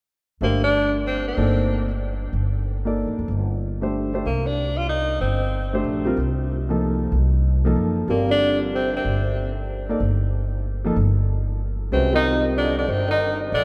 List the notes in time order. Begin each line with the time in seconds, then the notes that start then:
0.41 G1 A3 A#3 D4 G4 C5
0.64 D4
1.07 C4
1.28 C4
1.37 G1 A#3 D#4 A4 D5
2.33 G1
2.85 A#3 D#4 A4 D5
3.07 A1
3.19 F1
3.28 G1
3.81 A3 D4 G4 C5
4.13 A3 D4 G4 C5
4.25 C2 A#3
4.46 D4
4.78 F4
4.89 D#4
5.20 G1 C4
5.73 A3 D4 G4 C5
5.84 A#1
6.05 G3 C4 F4 A#4
6.17 C2
6.69 F3 A#3 D#4 A4
7.12 C2
7.65 F3 A#3 D#4 A4
7.76 F#1
8.08 G1 A#2 G3 A#3 C4 F4 A#4
8.28 D3 D4
8.73 C3 C4
8.94 C3 C4
9.05 G1
9.89 A#3 D#4 A4 D5
10.00 G1
10.85 F3 A#3 D#4 A4
10.96 G1
11.92 C2 C3 G#3 C4 C#4 F#4 B4
12.12 D#3 G3 C4 D#4 F4 A#4
12.57 D3 D4
12.77 D3 D4
12.88 G1 C3 C4
13.07 D#3 D#4
13.51 A#1 D3 D4